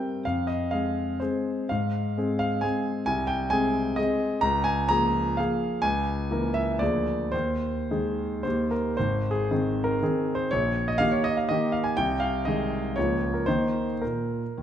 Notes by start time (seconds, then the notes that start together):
Already playing: G3 C4 A#4 G5
0.25 F2 F5
0.47 D#5
0.71 G#3 C4 G#4 F5
1.20 G#3 C4 G#4 C5
1.69 G#2 F5
2.17 G#3 C4 G#4
2.39 F5
2.61 G#3 C4 G#4 G#5
3.06 C2 G#5
3.27 G5
3.50 G#3 C4 G#4 G#5
3.96 G#3 C4 G#4 D#5
4.41 C#2 A#5
4.64 G#5
4.89 F3 A#3 G#4 A#5
5.37 F3 A#3 G#4 F5
5.82 C#2 G#5
6.31 E3 A#3 A#4
6.54 E5
6.79 D2 F3 A#3 G#4 D5
7.32 D#2 C5
7.91 D#3 G#3 G#4
8.43 D#2 D#3 A#3 G4 C5
8.71 A#4
8.97 G#1 C5
9.31 G#4
9.51 D#3 C4 G#4
9.84 A#4
10.02 D#3 C4 G#4
10.35 C5
10.51 A#1 C#5
10.88 D#5
10.98 D#3 A#3 G4 F5
11.12 C#5
11.24 D#5
11.37 F5
11.49 D#3 A#3 G4 D#5
11.72 F5
11.84 G#5
11.97 C2 G5
12.20 F5
12.45 D#3 G#3 G#4 D#5
12.96 C#2 F3 A#3 F4 C#5
13.34 A#4
13.46 D#3 A#3 D#4 C5
14.02 A#2 A#4
14.58 D#2